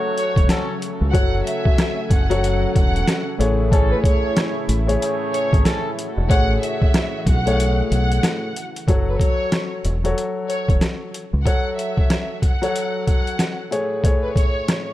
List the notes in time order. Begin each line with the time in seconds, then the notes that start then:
Already playing: C#3 F#3 A3 F#4 A4 C#5
0.17 C#5, closed hi-hat
0.36 E1, kick, closed hi-hat
0.49 F#3 C#4 A4, cross-stick, snare, closed hi-hat
0.82 closed hi-hat
1.01 C#2
1.12 F#1 F#3 F#4 A4 C#5 F#5 G#5, kick, closed hi-hat
1.45 E5, closed hi-hat
1.65 kick
1.78 cross-stick, snare, closed hi-hat
2.10 F#1 F#5, kick, closed hi-hat
2.30 F#3 F#4 A4 C#5, closed hi-hat
2.44 closed hi-hat
2.76 E1 F#5, kick, closed hi-hat
2.96 closed hi-hat
3.08 cross-stick, snare, closed hi-hat
3.38 A1 A2 E3 A3 E4 G#4 C#5, closed hi-hat
3.71 A2 A3 C#4 G#4 A4 C#5, kick, closed hi-hat
3.91 B4
4.02 C#5, kick, closed hi-hat
4.25 A3 G#4 C#5
4.37 cross-stick, snare, closed hi-hat
4.69 A1, closed hi-hat
4.87 A2 A3 G#4 C#5, closed hi-hat
5.01 A3 G#4 C#5, closed hi-hat
5.32 C#5, closed hi-hat
5.53 G#1, kick, closed hi-hat
5.65 C#4 A4, cross-stick, snare, closed hi-hat
5.99 F#4, closed hi-hat
6.18 E1
6.28 A1 A2 A3 G#4 C#5 F#5, kick, closed hi-hat
6.61 E5, closed hi-hat
6.82 kick
6.94 cross-stick, snare, closed hi-hat
7.27 B1 F#5, kick, closed hi-hat
7.46 A2 A3 G#4 C#5, closed hi-hat
7.60 closed hi-hat
7.91 B1 F#5, closed hi-hat
8.12 closed hi-hat
8.23 cross-stick, snare, closed hi-hat
8.56 closed hi-hat
8.76 closed hi-hat
8.88 F#1 F#3 F#4 A4 C#5, kick, closed hi-hat
9.09 B4
9.20 C#5, kick, closed hi-hat
9.52 cross-stick, snare, closed hi-hat
9.85 E1, closed hi-hat
10.04 F#3 F#4 A4 C#5, closed hi-hat
10.18 closed hi-hat
10.49 C#5, closed hi-hat
10.69 E1, kick, closed hi-hat
10.81 cross-stick, snare, closed hi-hat
11.14 closed hi-hat
11.33 C#2
11.44 F#3 F#4 A4 C#5 F#5, kick, closed hi-hat
11.78 E5, closed hi-hat
11.97 kick
12.10 cross-stick, snare, closed hi-hat
12.42 F#5, kick, closed hi-hat
12.62 F#3 F#4 A4 C#5, closed hi-hat
12.76 closed hi-hat
13.07 F#5, kick, closed hi-hat
13.27 closed hi-hat
13.39 cross-stick, snare, closed hi-hat
13.71 A2 A3 G#4 C#5, closed hi-hat
14.03 A2 A3 G#4 C#5, kick, closed hi-hat
14.23 B4
14.34 C#5, kick, closed hi-hat
14.68 cross-stick, snare, closed hi-hat